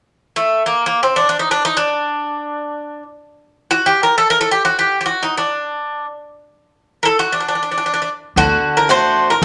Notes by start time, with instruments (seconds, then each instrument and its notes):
0.36 bouzouki A3
0.66 bouzouki A#3
0.86 bouzouki A#3
1.03 bouzouki C4
1.16 bouzouki D4
1.29 bouzouki D4
1.39 bouzouki D#4
1.51 bouzouki D4
1.65 bouzouki D#4
1.77 bouzouki D4
3.71 bouzouki F#4
3.86 bouzouki G4
4.03 bouzouki A#4
4.18 bouzouki A4
4.30 bouzouki A#4
4.41 bouzouki A4
4.51 bouzouki G4
4.65 bouzouki F#4
4.79 bouzouki G4
5.01 bouzouki G4
5.06 bouzouki F#4
5.23 bouzouki D#4
5.38 bouzouki D4
7.03 bouzouki A4 A#4
7.19 bouzouki F#4
7.32 bouzouki D4
7.40 bouzouki D4
7.48 bouzouki D4
7.55 bouzouki D4
7.63 bouzouki D4
7.71 bouzouki D4
7.78 bouzouki D4
7.86 bouzouki D4
7.94 bouzouki D4
8.02 bouzouki D4
8.36 upright bass D2, steel-string acoustic guitar D3, bouzouki F#4
8.77 bouzouki A#4
8.89 steel-string acoustic guitar A3 D4 F#4, bouzouki C5
9.30 bouzouki A#4
9.42 upright bass A1